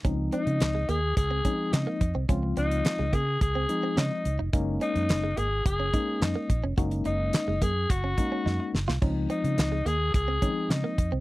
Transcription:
<<
  \new Staff \with { instrumentName = "Alto saxophone" } { \time 4/4 \key des \major \tempo 4 = 107 r8 ees'4 aes'8 aes'4 ees'8. r16 | r8 ees'4 aes'8 aes'4 ees'8. r16 | r8 ees'4 aes'8 aes'4 ees'8. r16 | r8 ees'4 aes'8 ges'4. r8 |
r8 ees'4 aes'8 aes'4 ees'8. r16 | }
  \new Staff \with { instrumentName = "Clean electric guitar" } { \time 4/4 \key des \major des'16 r16 c'16 r8 aes16 bes16 r8 c'16 des'16 r8 bes16 r16 c'16 | des'16 r16 c'16 r8 aes16 bes16 r8 c'16 r16 c'16 des'16 r8 ees'16 | ees'16 r16 des'16 r8 aes16 bes16 r8 des'16 ees'16 r8 bes16 r16 des'16 | ges'16 r16 ees'16 r8 aes16 bes16 r8 des'16 r16 des'16 ees'16 r8 f'16 |
des'16 r16 c'16 r8 aes16 bes16 r8 c'16 des'16 r8 bes16 r16 c'16 | }
  \new Staff \with { instrumentName = "Tine electric piano" } { \time 4/4 \key des \major <f aes c' ees'>4. r4 <f aes c' ees'>4 r8 | <f aes c' f'>4. r4 <f aes c' ees'>4 r8 | <aes bes des' ees'>4. r4 <aes bes des' ees'>4 r8 | <aes bes des' ees'>4. r4 <aes bes des' ees'>4 r8 |
<f aes c' ees'>4. r4 <ees f aes c' ees'>4 r8 | }
  \new Staff \with { instrumentName = "Fingered electric bass" } { \clef bass \time 4/4 \key des \major des,8 r16 des16 des,8 ees,8 des,8 r8 des16 r16 f,16 c,16 | des,8 des,8 r16 des,16 des8 des,8 r8 des16 r16 des,16 f,,16 | ges,,8 r16 ges,16 ges,,8 aes,,8 ges,,8 r8 ges,16 r16 bes,,16 f,,16 | ges,,8 ges,,8 r16 ges,,16 ges,8 ges,,8 r8 ges,16 r16 ges,,16 c,16 |
des,8 r16 des16 des,8 ees,8 des,8 r8 des16 r16 f,16 c,16 | }
  \new DrumStaff \with { instrumentName = "Drums" } \drummode { \time 4/4 <hh bd>8 hh16 hh16 <hc hh sn>8 hh8 <hh bd>8 <hh bd>8 <hc hh sn>8 <hh bd>8 | <hh bd>8 hh16 hh16 <hc hh sn>8 <hh bd>8 <hh bd>8 hh8 <hc hh sn>8 hh8 | <hh bd>8 hh16 hh16 <hc hh sn>8 hh8 <hh bd>8 <hh bd>8 <hc hh sn>8 <hh bd>8 | <hh bd>16 hh16 hh8 <hc hh sn>8 <hh bd>8 <hh bd>8 <hh bd>8 sn8 sn16 sn16 |
<cymc bd>8 hh16 hh16 <hc hh sn>8 hh8 <hh bd>8 <hh bd>8 <hc hh sn>8 <hh bd>8 | }
>>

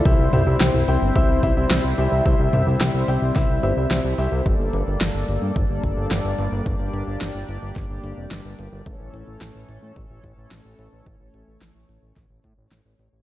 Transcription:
<<
  \new Staff \with { instrumentName = "Grand piano" } { \time 4/4 \key c \mixolydian \tempo 4 = 109 <e' g' c'' e''>8 <e' g' c'' e''>16 <e' g' c'' e''>16 <e' g' c'' g''>8 <e' g' c'' g''>8 <e' g' c'' e''>8 <e' g' c'' e''>16 <e' g' c'' e''>16 <e' g' c'' e''>16 r16 <e' g' c'' e''>8 | <e' g' c'' e''>8 <e' g' c'' e''>16 <e' g' c'' e''>16 <e' g' c'' g''>8 <e' g' c'' g''>8 <e' g' c'' e''>8 <e' g' c'' e''>16 <e' g' c'' e''>16 <e' g' c'' e''>16 r16 <e' g' c'' e''>8 | r1 | r1 |
r1 | r1 | }
  \new Staff \with { instrumentName = "Analog synth pad" } { \time 4/4 \key c \mixolydian << { <g c' e' e''>1~ | <g c' e' e''>1 | <g bes d' d''>1~ | <g bes d' d''>1 |
<e a cis' cis''>1~ | <e a cis' cis''>1 | } \\ { c''1~ | c''1 | a'1 | g'1 |
a'1~ | a'1 | } >> }
  \new Staff \with { instrumentName = "Analog synth bass" } { \clef bass \time 4/4 \key c \mixolydian c,16 c,16 c,16 c,16 c,16 c,16 c,16 g,,16 c,16 c,16 c,16 c,16 c,16 c,16 c,16 c,16 | c,16 c,16 c,16 c,16 c,16 c,16 c,16 c,16 c,16 c,16 g,,16 c,16 c,16 c,16 c,16 c,16 | g,,16 g,,16 g,,16 g,,16 g,,16 g,,16 g,,16 g,16 g,,16 g,,16 g,,16 g,,16 g,,16 g,,16 g,,16 g,,16 | g,,16 g,,16 g,,16 g,,16 g,,16 g,,16 g,,16 g,,16 g,,16 g,,16 g,,16 f,,16 g,,16 g,,16 g,,16 g,,16 |
a,,16 a,,16 a,,16 a,,16 a,,16 a,,16 a,,16 a,16 a,,16 a,,16 a,,16 a,,16 a,,16 a,,16 a,,16 a,,16 | a,,16 a,,16 a,,16 a,,16 a,,16 a,,16 a,,16 a,,16 a,,16 a,,16 a,16 a,,16 a,,16 a,,16 a,,16 a,,16 | }
  \new DrumStaff \with { instrumentName = "Drums" } \drummode { \time 4/4 <hh bd>8 <hh toml>8 <hh sn>16 toml16 hh8 <hh bd>8 <hh bd>8 <hh sn>8 hh8 | <hh bd>8 <hh toml>8 <hh sn>8 hh8 <hh bd sn>8 hh8 <hh sn>8 hh8 | <hh bd>8 hh8 <hh sn>8 hh8 <hh bd>8 <hh bd>8 <hh sn>8 hh8 | <hh bd>8 hh8 <hh sn>8 hh8 <hh bd sn>8 hh8 <hh sn>8 hh8 |
<hh bd>8 hh8 <hh sn>8 hh8 <hh bd>8 <hh bd>8 <hh sn>8 hh8 | <hh bd>8 hh8 <hh sn>8 hh8 <hh bd sn>8 <hh bd>8 <hh sn>8 hh8 | }
>>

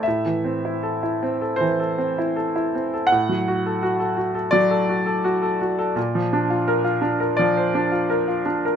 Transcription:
\new Staff \with { instrumentName = "Grand piano" } { \time 4/4 \key d \mixolydian \tempo 4 = 84 << { e''2 c''2 | fis''2 d''2~ | d''2 d''4. r8 | } \\ { a,16 e16 c'16 e'16 a'16 e'16 c'16 a'16 e16 a'16 c'16 e'16 a'16 e'16 c'16 a'16 | a,16 fis16 fis'16 a'16 fis'16 a'16 fis'16 a'16 fis16 a'16 fis'16 a'16 fis'16 a'16 fis'16 a'16 | bes,16 f16 d'16 f'16 bes'16 f'16 d'16 bes'16 f16 c''16 d'16 f'16 bes'16 f'16 d'16 bes'16 | } >> }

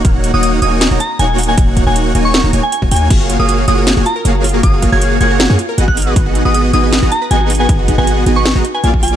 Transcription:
<<
  \new Staff \with { instrumentName = "Synth bell" } { \time 4/4 \key gis \dorian \tempo 4 = 157 r8. dis'''16 dis'''16 r16 dis'''16 r8. ais''16 r16 gis''16 r8 gis''16 | r8. gis''16 r8. cis'''16 cis'''16 r8 gis''16 gis''16 r16 gis''8 | r8. dis'''16 dis'''16 r16 dis'''16 r8. ais''16 r4 r16 | dis'''16 r8 gis'''16 r8 gis'''16 r4. fis'''16 r8 |
r8. dis'''16 dis'''16 r16 dis'''16 r8. ais''16 r16 gis''16 r8 gis''16 | r8. gis''16 r8. cis'''16 cis'''16 r8 gis''16 gis''16 r16 gis''8 | }
  \new Staff \with { instrumentName = "Supersaw synth" } { \time 4/4 \key gis \dorian <ais dis' fis' cis'' fis''>8. <ais dis' fis' cis'' fis''>8. <ais dis' fis' cis'' gis''>8. <ais dis' fis' cis'' ais''>16 r8 <ais dis' fis' cis'' fis''>4 | <ais dis' fis' cis'' fis''>8. <ais dis' fis' cis'' fis''>8. <ais dis' fis' cis'' gis''>8. <ais dis' fis' cis'' ais''>16 <ais dis' fis' cis'' gis''>16 r8 <ais dis' fis' cis'' gis''>16 <ais dis' fis' cis'' gis''>8 | <ais fis' gis' cis'' eis''>8. <ais fis' gis' cis'' eis''>8. <ais fis' gis' cis'' fis''>8. <ais fis' gis' cis'' gis''>16 r8 <ais fis' gis' cis'' eis''>4 | <ais fis' gis' cis'' eis''>8. <ais fis' gis' cis'' eis''>8. <ais fis' gis' cis'' fis''>8. <ais fis' gis' cis'' gis''>16 r8 <b fis' gis' dis'' fis''>4 |
<b fis' gis' dis'' fis''>8. <b fis' gis' dis'' fis''>8. <b fis' gis' dis'' gis''>8. <b fis' gis' dis'' ais''>16 r8 <b fis' gis' dis'' fis''>4 | <b fis' gis' dis'' fis''>8. <b fis' gis' dis'' fis''>8. <b fis' gis' dis'' gis''>8. <b fis' gis' dis'' ais''>16 r8 <ais eis' gis' d'' eis''>4 | }
  \new Staff \with { instrumentName = "Synth arpeggio sound" } { \time 4/4 \key gis \dorian r1 | r1 | eis'16 fis'16 eis'16 ais'16 fis'16 fis'16 eis'16 ais'16 eis'16 fis'16 eis'16 ais'16 fis'16 fis'16 eis'16 ais'16 | eis'16 fis'16 eis'16 ais'16 fis'16 fis'16 eis'16 ais'16 eis'16 fis'16 eis'16 ais'16 fis'16 fis'16 dis'16 b'16 |
dis'16 fis'16 dis'16 b'16 fis'16 fis'16 dis'16 b'16 dis'16 fis'16 dis'16 b'16 fis'16 fis'16 dis'16 b'16 | dis'16 fis'16 dis'16 b'16 fis'16 fis'16 dis'16 b'16 dis'16 fis'16 dis'16 b'16 fis'16 fis'16 eis'16 d''16 | }
  \new Staff \with { instrumentName = "808-style bass" } { \clef bass \time 4/4 \key gis \dorian dis,,8. dis,,8. dis,,8. dis,,16 r8 dis,,4 | dis,,8. dis,,8. dis,,8. dis,,16 dis,,16 r8 dis,,16 dis,8 | fis,,8. fis,,8. fis,,8. fis,,16 r8 fis,,4 | fis,,8. fis,,8. fis,,8. fis,16 r8 gis,,4 |
gis,,8. gis,,8. gis,,8. gis,,16 r8 gis,,4 | gis,,8. gis,,8. gis,,8. gis,,16 r8 ais,,4 | }
  \new DrumStaff \with { instrumentName = "Drums" } \drummode { \time 4/4 <hh bd>8 hh8 hh8 hh8 <hh sn>8 hh8 hh8 hho32 hh16. | <hh bd>8 <hh bd>8 hh8 hh8 <hh sn>8 hh8 hh16 bd16 hho32 hh16. | <cymc hh bd>8 hh8 hh8 hh8 <hh sn>8 hh8 hh8 hho32 hh16. | <hh bd>8 <hh bd>8 hh8 hh8 <hh sn>8 hh8 hh16 bd16 hho32 hh16. |
<hh bd>8 hh8 hh8 hh8 <hh sn>8 hh8 hh8 hho32 hh16. | <hh bd>8 <hh bd>8 hh8 hh8 <hh sn>8 hh8 hh16 bd16 hho32 hh16. | }
>>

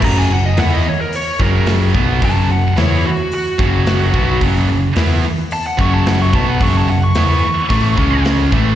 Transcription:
<<
  \new Staff \with { instrumentName = "Lead electric guitar" } { \time 4/4 \key cis \dorian \tempo 4 = 110 ais''16 gis''16 fis''16 dis''16 fis''16 dis''16 cis''16 ais'16 cis''8 ais'8 r4 | a''8 fis''8 cis''8 fis'8 fis'2 | r2 a''16 fis''16 cis'''16 a''16 fis''16 cis'''16 a''16 fis''16 | cis'''16 a''16 fis''16 cis'''16 cis'''2 r4 | }
  \new Staff \with { instrumentName = "Distorted electric guitar" } { \clef bass \time 4/4 \key cis \dorian <fis, cis fis>8 <fis, cis>8 <e b e'>8 r4 <fis, cis fis>4 <b, fis b>8 | <fis, cis fis>8 <fis, cis>8 <e b e'>8 r4 <fis, cis fis>4 <b, fis b>8 | <fis, cis fis>8 <fis, cis>8 <e b e'>8 r4 <fis, cis fis>4 <b, fis b>8 | <fis, cis fis>8 <fis, cis>8 <e b e'>8 r8 <a, e a>8 <cis gis cis'>4 <a, e a>8 | }
  \new Staff \with { instrumentName = "Overdriven electric guitar" } { \clef bass \time 4/4 \key cis \dorian <fis, cis fis>8 <fis, cis>8 <e b e'>8 r4 <fis, cis fis>4 <b, fis b>8 | <fis, cis fis>8 <fis, cis>8 <e b e'>8 r4 <fis, cis fis>4 <b, fis b>8 | <fis, cis fis>8 <fis, cis>8 <e b e'>8 r4 <fis, cis fis>4 <b, fis b>8 | <fis, cis fis>8 <fis, cis>8 <e b e'>8 r8 <a, e a>8 <cis gis cis'>4 <a, e a>8 | }
  \new Staff \with { instrumentName = "Picked electric bass" } { \clef bass \time 4/4 \key cis \dorian fis,,8 fis,,8 e,8 r4 fis,,4 b,,8 | fis,,8 fis,,8 e,8 r4 fis,,4 b,,8 | fis,,8 fis,,8 e,8 r4 fis,,4 b,,8 | fis,,8 fis,,8 e,8 r8 a,,8 cis,4 a,,8 | }
  \new DrumStaff \with { instrumentName = "Drums" } \drummode { \time 4/4 <cymc bd>4 <hho sn>4 hho8 bd8 <hho sn>8 bd8 | <hho bd>4 <hho sn>4 hho8 bd8 <hho sn>8 bd8 | <hho bd>4 <hho sn>4 hho8 bd8 <hho sn>8 bd8 | <hho bd>4 <hho sn>4 <hho bd>8 bd8 <hho sn>8 bd8 | }
>>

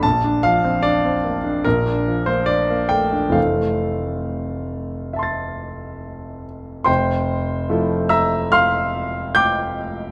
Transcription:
<<
  \new Staff \with { instrumentName = "Grand piano" } { \time 4/4 \key f \major \tempo 4 = 71 << { r1 | r2 <e'' a'' c''' a'''>2 | <c'' g''>4. <e'' bes''>8 <f'' c'''>4 <g'' d'''>4 | } \\ { a''8 f''8 d''4 bes'8. c''16 d''8 g''8 | f''2.~ f''8 r8 | c'''4. e'''8 f'''4 g'''4 | } >> }
  \new Staff \with { instrumentName = "Grand piano" } { \time 4/4 \key f \major bes,,16 d'16 f16 c'16 d'16 c'16 bes16 d'16 bes,,16 d'16 f16 bes16 d'16 bes16 a16 d'16 | <f,, e a c' a'>1 | f,,4 <f a e' a'>2. | }
>>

